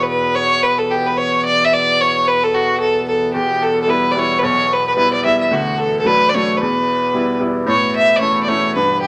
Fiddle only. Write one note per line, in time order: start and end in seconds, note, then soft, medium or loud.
0.03 0.08 B4 medium
0.08 0.37 B4 medium
0.35 0.64 C#5 loud
0.63 0.80 B4 medium
0.78 0.92 A4 medium
0.91 1.08 G4 medium
1.06 1.19 B4 medium
1.17 1.44 C#5 medium
1.45 1.66 D5 loud
1.64 1.75 E5 medium
1.73 2.02 D5 loud
2.01 2.29 C#5 medium
2.27 2.45 B4 loud
2.43 2.56 A4 medium
2.55 2.79 F#4 medium
2.80 3.05 A4 medium
3.08 3.33 A4 medium
3.33 3.64 G4 medium
3.62 3.82 A4 medium
3.82 3.91 A4 medium
3.90 4.13 B4 medium
4.11 4.20 D5 medium
4.19 4.41 C#5 medium
4.39 4.46 B4 medium
4.44 4.75 C#5 medium
4.73 4.87 B4 medium
4.87 4.96 B4 medium
4.97 5.11 B4 loud
5.13 5.24 D5 medium
5.25 5.39 E5 medium
5.41 5.54 E5 medium
5.53 5.80 F#4 medium
5.78 5.99 A4 medium
6.00 6.08 A4 medium
6.07 6.30 B4 medium
6.29 6.36 D5 medium
6.34 6.58 C#5 medium
6.57 6.61 B4 medium
6.62 7.38 B4 medium
7.68 7.93 C#5 medium
7.96 8.18 E5 loud
8.16 8.20 D5 medium
8.20 8.41 C#5 medium
8.43 8.50 D5 medium
8.48 8.74 C#5 medium
8.75 9.01 B4 medium
9.01 9.07 G4 medium